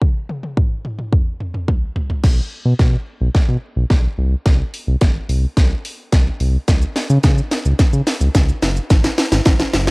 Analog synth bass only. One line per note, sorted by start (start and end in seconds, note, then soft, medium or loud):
2.24 2.41 B1 loud
2.65 2.74 B2 medium
2.79 2.96 B2 loud
3.21 3.29 B1 loud
3.48 3.57 B2 medium
3.76 3.85 B1 medium
3.90 4.07 B1 medium
4.18 4.35 C2 loud
4.46 4.63 C2 loud
4.87 4.96 C2 medium
5.01 5.19 G#1 medium
5.29 5.46 C2 medium
5.57 5.74 C2 loud
6.13 6.30 C2 loud
6.40 6.57 C2 loud
6.68 6.85 C#2 loud
7.10 7.18 C#3 loud
7.24 7.41 C#3 loud
7.65 7.74 C#2 medium
7.79 7.85 C#3 medium
7.93 8.02 C#3 loud
8.21 8.29 C#2 medium
8.35 8.52 C#2 loud
8.62 8.79 F#1 loud
8.90 9.07 G#1 loud
9.32 9.40 G#1 loud
9.46 9.63 G#1 loud
9.74 9.91 F#1 medium